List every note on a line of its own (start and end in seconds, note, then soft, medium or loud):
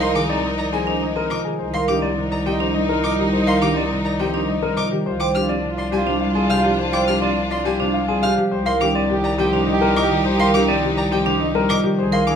0.00 1.44 C2 medium
0.00 0.43 C3 medium
0.00 0.15 D#3 medium
0.00 0.72 F3 medium
0.00 1.01 G#3 medium
0.00 0.16 D#4 medium
0.00 1.41 D#4 medium
0.00 1.41 A#4 medium
0.00 0.20 A#4 medium
0.00 0.20 F5 medium
0.00 0.12 C6 medium
0.15 1.44 D#3 medium
0.15 0.34 G#4 medium
0.15 0.26 D6 medium
0.25 0.46 D#4 medium
0.29 0.48 C4 medium
0.29 0.49 D5 medium
0.44 1.30 C3 medium
0.56 0.77 D#4 medium
0.56 0.77 D5 medium
0.56 0.69 A#5 medium
0.73 1.62 F3 medium
0.73 0.92 C4 medium
0.73 0.92 G#4 medium
0.73 0.84 G#5 medium
0.85 1.06 D4 medium
0.85 1.06 D#4 medium
0.85 1.06 C5 medium
1.02 1.62 G#3 medium
1.02 1.21 D#5 medium
1.15 1.35 C4 soft
1.15 1.36 D#4 soft
1.15 1.35 A#4 medium
1.30 1.62 C3 medium
1.30 1.49 F4 medium
1.30 1.50 D#5 medium
1.30 1.41 D6 medium
1.45 1.62 D#3 medium
1.45 1.64 G#4 medium
1.59 4.90 C2 medium
1.59 1.81 D#4 soft
1.59 4.88 D#4 medium
1.59 4.88 A#4 medium
1.59 1.78 C5 medium
1.74 1.93 A#4 medium
1.74 1.93 F5 medium
1.74 1.85 C6 medium
1.88 3.18 D#3 medium
1.88 2.07 D4 medium
1.88 2.11 D#4 soft
1.88 2.07 G4 medium
1.88 1.99 D6 medium
2.02 2.22 C4 medium
2.02 2.21 D5 medium
2.18 3.03 C3 medium
2.18 2.41 D#4 medium
2.31 2.50 D5 medium
2.31 2.43 A#5 medium
2.46 4.18 F3 medium
2.46 2.65 C4 medium
2.46 2.65 G4 medium
2.46 2.57 G5 medium
2.50 2.71 D#4 medium
2.60 2.79 D4 medium
2.60 2.79 C5 medium
2.74 4.47 G3 medium
2.74 2.94 D#5 medium
2.81 3.02 D#4 medium
2.89 3.08 C4 soft
2.89 3.08 A#4 medium
3.03 3.89 C3 medium
3.03 3.23 F4 medium
3.03 3.23 D#5 medium
3.03 3.15 D6 medium
3.11 3.32 D#4 medium
3.19 3.61 D#3 medium
3.19 3.37 G4 medium
3.32 3.52 C5 medium
3.41 3.62 D#4 medium
3.47 3.66 A#4 medium
3.47 3.66 F5 medium
3.47 3.58 C6 medium
3.62 4.90 D#3 medium
3.62 3.81 D4 medium
3.62 3.80 G4 medium
3.62 3.73 D6 medium
3.71 3.92 D#4 medium
3.76 3.95 C4 medium
3.76 3.95 D5 medium
3.91 4.75 C3 medium
4.02 4.23 D#4 medium
4.02 4.24 D5 medium
4.02 4.16 A#5 medium
4.19 5.34 F3 medium
4.19 4.38 C4 medium
4.19 4.38 G4 medium
4.19 4.30 G5 medium
4.32 4.53 D4 medium
4.32 4.53 D#4 medium
4.32 4.53 C5 medium
4.48 5.08 G3 medium
4.48 4.67 D#5 medium
4.62 4.81 C4 medium
4.62 4.83 D#4 soft
4.62 4.81 A#4 medium
4.76 5.08 C3 medium
4.76 4.96 F4 medium
4.76 4.96 D#5 medium
4.76 4.88 D6 medium
4.91 5.08 D#3 medium
4.91 5.10 G4 medium
5.05 8.37 C2 medium
5.05 8.33 D4 medium
5.05 8.33 F4 medium
5.05 5.27 F4 soft
5.05 5.25 C5 medium
5.20 5.39 C5 medium
5.20 5.39 G5 medium
5.20 5.31 D6 medium
5.35 6.63 F3 medium
5.35 5.54 D4 medium
5.35 5.58 F4 soft
5.35 5.54 G4 medium
5.35 5.46 F6 medium
5.49 5.68 C4 medium
5.49 5.68 D5 medium
5.63 6.06 C3 medium
5.63 5.87 F4 medium
5.78 5.97 D5 medium
5.78 5.89 C6 medium
5.92 7.64 G3 medium
5.92 6.11 C4 medium
5.92 6.11 G4 medium
5.92 6.03 G#5 medium
5.96 6.17 F4 medium
6.06 6.49 C3 medium
6.06 6.26 D4 medium
6.06 6.25 C5 medium
6.21 7.93 G#3 medium
6.21 6.40 F5 medium
6.27 6.48 F4 medium
6.35 6.54 C4 medium
6.35 6.54 G#4 medium
6.50 7.35 C3 medium
6.50 6.69 G4 medium
6.50 6.69 F5 medium
6.50 6.61 F6 medium
6.57 6.78 F4 medium
6.64 7.06 F3 medium
6.64 6.83 G4 medium
6.79 6.98 C5 medium
6.88 7.09 F4 medium
6.93 7.12 C5 medium
6.93 7.12 G5 medium
6.93 7.04 D6 medium
7.07 8.36 F3 medium
7.07 7.27 D4 medium
7.07 7.26 G4 medium
7.07 7.18 F6 medium
7.17 7.38 F4 medium
7.22 7.41 C4 medium
7.22 7.41 D5 medium
7.36 7.79 C3 medium
7.48 7.69 F4 medium
7.48 7.70 D5 medium
7.48 7.62 C6 medium
7.65 9.66 G3 medium
7.65 7.84 C4 medium
7.65 7.84 G4 medium
7.65 7.76 G#5 medium
7.78 8.21 C3 medium
7.78 7.99 D4 medium
7.78 7.99 F4 medium
7.78 7.99 C5 medium
7.94 8.54 G#3 medium
7.94 8.13 F5 medium
8.08 8.28 C4 medium
8.08 8.29 F4 soft
8.08 8.27 G#4 medium
8.22 8.54 C3 medium
8.22 8.42 G4 medium
8.22 8.42 F5 medium
8.22 8.34 F6 medium
8.37 9.37 F3 medium
8.37 8.56 G4 medium
8.52 11.83 C2 medium
8.52 11.80 D#4 medium
8.52 11.80 G4 medium
8.52 8.74 G4 soft
8.52 8.71 C5 medium
8.66 8.85 A#4 medium
8.66 8.85 F5 medium
8.66 8.77 C6 medium
8.81 10.09 D#3 medium
8.81 9.00 D4 medium
8.81 9.00 G4 medium
8.81 9.04 G4 medium
8.81 8.92 D6 medium
8.95 9.14 C4 medium
8.95 9.14 D5 medium
9.09 9.52 C3 medium
9.09 9.28 G4 medium
9.09 9.34 G4 medium
9.24 9.43 D5 medium
9.24 9.35 A#5 medium
9.38 11.11 F3 medium
9.38 9.57 C4 medium
9.38 9.57 G4 medium
9.38 9.49 G5 medium
9.42 9.64 G4 medium
9.53 9.95 C3 medium
9.53 9.72 D4 medium
9.53 9.72 C5 medium
9.67 11.40 G3 medium
9.67 9.86 D#5 medium
9.73 9.94 G4 medium
9.81 10.01 C4 medium
9.81 10.00 A#4 medium
9.96 10.81 C3 medium
9.96 10.15 F4 medium
9.96 10.15 D#5 medium
9.96 10.07 D6 medium
10.03 10.24 G4 medium
10.11 10.52 D#3 medium
10.11 10.30 G4 medium
10.25 10.44 C5 medium
10.34 10.54 G4 medium
10.40 10.58 A#4 medium
10.40 10.58 F5 medium
10.40 10.50 C6 medium
10.54 11.83 D#3 medium
10.54 10.73 D4 medium
10.54 10.73 G4 medium
10.54 10.65 D6 medium
10.64 10.85 G4 medium
10.68 10.87 C4 medium
10.68 10.87 D5 medium
10.83 11.25 C3 medium
10.83 11.02 G4 medium
10.94 11.15 G4 medium
10.94 11.16 D5 medium
10.94 11.08 A#5 medium
11.12 12.36 F3 medium
11.12 11.30 C4 medium
11.12 11.30 G4 medium
11.12 11.23 G5 medium
11.24 11.68 C3 medium
11.24 11.45 D4 medium
11.24 11.45 G4 medium
11.24 11.45 C5 medium
11.40 12.01 G3 medium
11.40 11.59 D#5 medium
11.54 11.74 C4 medium
11.54 11.75 G4 soft
11.54 11.74 A#4 medium
11.69 12.01 C3 medium
11.69 11.88 F4 medium
11.69 11.88 D#5 medium
11.69 11.80 D6 medium
11.84 12.01 D#3 medium
11.84 12.03 G4 medium
11.98 12.36 C2 medium
11.98 12.36 D#4 medium
11.98 12.36 G#4 medium
11.98 12.20 G#4 soft
11.98 12.17 C5 medium
12.12 12.31 A#4 medium
12.12 12.32 F5 medium
12.12 12.23 C6 medium
12.27 12.36 D#3 medium
12.27 12.36 D4 medium
12.27 12.36 G#4 medium
12.27 12.36 D6 medium